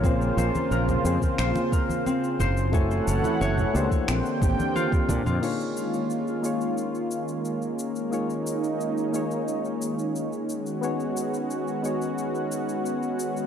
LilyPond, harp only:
\new Staff \with { instrumentName = "Harp" } { \time 4/4 \key bes \phrygian \tempo 4 = 89 c'16 r16 c''16 r16 bes'16 r16 c'16 r16 c''16 r16 bes'16 r16 c'16 r16 c''16 r16 | a'16 r16 des'16 r16 des''16 r16 a'16 r16 c'16 r16 g'16 r16 f'16 r16 d'16 f'16 | \key ees \minor r1 | r1 |
r1 | }